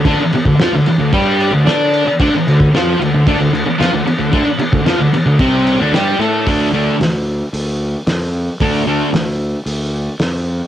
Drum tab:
CC |x-x-x-x-x-x-x-x-|x-x-x-x-x-x-x-x-|x-x-x-x-x-x-x-x-|----------------|
HH |----------------|----------------|----------------|o---o---o---o---|
SD |----o-------o---|----o-------o---|----o-------o---|----o-------o---|
BD |o--o----o-------|o--o----o-------|o--o----o-------|o---------------|

CC |----------------|
HH |o---o---o---o---|
SD |----o-------o---|
BD |o---------------|